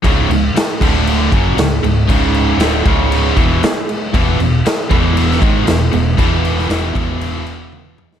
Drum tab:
CC |x-x-x-x-x-x-x-x-|x-x-x-x-x-x-x-x-|x-x-x-x-x-x-x-x-|x-x-x-x-x-x-----|
SD |----o-------o---|----o-------o---|----o----o--o---|---oo----------o|
T1 |----------------|----------------|----------------|------------o---|
T2 |----------------|----------------|----------------|--------------o-|
BD |o-----o---o-----|o-----o---o-----|o-----o---o-----|o-----o---------|